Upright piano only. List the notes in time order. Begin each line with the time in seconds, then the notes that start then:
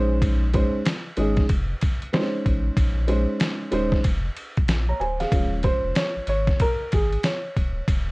Already playing: G#3 C#4 D#4 C5
0.53 G#3 C#4 D#4 C5
1.17 G#3 C#4 D#4 G#4
2.13 G#3 C4 D#4 C5
2.20 C#4
3.08 G#3 C#4 D#4 C5
3.71 G#3 C#4 D#4 C5
4.89 C#5 A#5
5.00 C5 G#5
5.20 G#4 F5
5.32 F3 G#3 C#4
5.64 C5
5.97 C#5
6.29 C#5
6.62 A#4
6.94 G#4
7.25 C#5